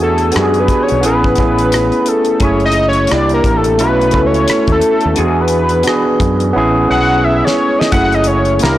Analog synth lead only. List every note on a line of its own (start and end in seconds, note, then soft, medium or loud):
0.02 0.38 A4 medium
0.36 0.61 G#4 medium
0.59 0.84 B4 medium
0.83 1.04 C#5 medium
1.06 2.10 B4 loud
2.08 2.44 A4 medium
2.42 2.65 C#5 loud
2.65 2.86 D#5 loud
2.88 3.12 C#5 medium
3.11 3.33 D5 loud
3.34 3.58 A#4 medium
3.57 3.79 A4 medium
3.79 4.28 B4 loud
4.26 4.71 C#5 medium
4.72 5.19 A4 loud
5.18 5.42 G#4 medium
5.41 6.44 B4 medium
6.90 7.25 F#5 loud
7.24 7.46 E5 loud
7.44 7.80 C#5 loud
7.79 7.91 D#5 medium
7.92 8.16 F#5 loud
8.14 8.29 D#5 medium
8.27 8.62 C#5 medium
8.63 8.78 A#4 medium